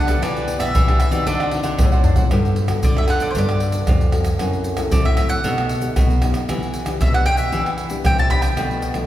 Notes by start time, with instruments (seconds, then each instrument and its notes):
Already playing: nylon-string guitar F#2 D3, mandolin F#5
0.07 nylon-string guitar B3 D4 G4, cavaquinho A4 B4 D5, pandeiro, tamborim, shaker, surdo
0.22 nylon-string guitar E3, cavaquinho E4 G4 B4 D5, mandolin D5, pandeiro, tamborim, shaker, surdo
0.36 cavaquinho G4 B4 D5, pandeiro, shaker
0.47 nylon-string guitar B3 D4 G4, pandeiro, shaker, surdo
0.59 nylon-string guitar B2, cavaquinho G4 B4 D5, mandolin E5, pandeiro, tamborim, shaker, surdo
0.74 nylon-string guitar E3, cavaquinho E4 G4 B4 D5, pandeiro, shaker, surdo
0.88 nylon-string guitar B3 D4 G4, cavaquinho G4 B4 D5, pandeiro, tamborim, shaker
1.00 mandolin E5, muted cavaquinho stroke, pandeiro, tamborim
1.11 nylon-string guitar E3 C4 D#4 F#4, cavaquinho G4 B4 D5, pandeiro, shaker, surdo
1.27 nylon-string guitar D3, cavaquinho D4 C5 D5 F#5, mandolin D5, pandeiro, shaker, surdo
1.40 cavaquinho C5 D5 F#5, pandeiro, tamborim, shaker
1.51 nylon-string guitar C4 D#4 F#4, muted cavaquinho stroke, pandeiro
1.63 nylon-string guitar D3, cavaquinho C5 D5 F#5, pandeiro, shaker
1.79 nylon-string guitar A2, pandeiro, tamborim, shaker, surdo
1.92 nylon-string guitar C4 D#4 F#4, cavaquinho C5 D5 F#5, pandeiro, shaker
2.04 cavaquinho D4 C5 D5 F#5, surdo, pandeiro
2.16 cavaquinho C5 D5 F#5, pandeiro, shaker, surdo
2.31 nylon-string guitar G2 G3 B3 F#4 A4, pandeiro, tamborim, shaker, surdo
2.45 pandeiro, shaker
2.56 pandeiro, surdo
2.68 nylon-string guitar B3 F#4 A4, pandeiro, tamborim, shaker, surdo
2.83 nylon-string guitar D3, mandolin D5, pandeiro, shaker, surdo
2.97 nylon-string guitar B3 F#4 A4, mandolin E5, pandeiro, tamborim, shaker
3.08 nylon-string guitar D3, mandolin F#5, pandeiro, tamborim, shaker
3.20 mandolin D5, pandeiro, shaker, surdo
3.31 mandolin C5
3.35 nylon-string guitar G2 G3 B3 F#4 A4, mandolin D5, pandeiro, shaker, surdo
3.49 pandeiro, tamborim, shaker
3.60 pandeiro
3.72 nylon-string guitar B3 F#4 A4, pandeiro, shaker
3.87 nylon-string guitar F2 D3, pandeiro, tamborim, shaker, surdo
4.01 pandeiro, shaker
4.12 nylon-string guitar B3 F#4 A4, pandeiro, tamborim
4.24 pandeiro, tamborim, shaker, surdo
4.39 nylon-string guitar F#2 F#3 C4 E4 A4, pandeiro, tamborim, shaker, surdo
4.53 pandeiro, shaker
4.64 pandeiro, shaker, surdo
4.77 nylon-string guitar C4 E4 A4, pandeiro, tamborim, shaker, surdo
4.92 nylon-string guitar C3 F#3, mandolin D5, pandeiro, shaker, surdo
5.05 nylon-string guitar C4 E4 A4, mandolin E5, pandeiro, tamborim, shaker
5.17 nylon-string guitar A2, mandolin E5, pandeiro, tamborim, shaker
5.29 mandolin F#5, pandeiro, shaker, surdo
5.44 nylon-string guitar B2 A3 D#4 G4, pandeiro, shaker, surdo
5.58 pandeiro, tamborim, shaker
5.69 pandeiro
5.81 nylon-string guitar A3 D#4 G4, pandeiro, shaker
5.96 nylon-string guitar F#2 B2, pandeiro, tamborim, shaker, surdo
6.10 pandeiro, shaker
6.22 nylon-string guitar A3 D#4 G4, pandeiro, tamborim, shaker, surdo
6.34 pandeiro, tamborim, shaker, surdo
6.49 nylon-string guitar E3 B3 D4 G4, pandeiro, tamborim, shaker, surdo
6.63 pandeiro, shaker
6.74 pandeiro, shaker, surdo
6.86 nylon-string guitar B3 D4 G4, pandeiro, tamborim, shaker, surdo
7.01 nylon-string guitar B2, mandolin E5, pandeiro, shaker, surdo
7.14 nylon-string guitar B3 D4 G4, mandolin F#5, pandeiro, tamborim, shaker
7.26 nylon-string guitar B2, mandolin G5, pandeiro, tamborim, shaker
7.37 mandolin E5, pandeiro, shaker, surdo
7.52 nylon-string guitar E3 B3 D4 G4, pandeiro, shaker, surdo
7.66 pandeiro, tamborim, shaker
7.78 pandeiro
7.90 nylon-string guitar B3 D4 G4, pandeiro, shaker
8.05 nylon-string guitar C3, mandolin G5, pandeiro, tamborim, shaker, surdo
8.18 mandolin A5, pandeiro, shaker
8.30 nylon-string guitar B3 D4 G4, mandolin B5, pandeiro, tamborim, surdo
8.42 mandolin G5, pandeiro, tamborim, shaker, surdo
8.57 nylon-string guitar B2 F3 A3 D4, pandeiro, tamborim, shaker, surdo
8.71 pandeiro, shaker
8.82 pandeiro, shaker, surdo
8.94 nylon-string guitar F3 A3 D4, pandeiro, tamborim, shaker, surdo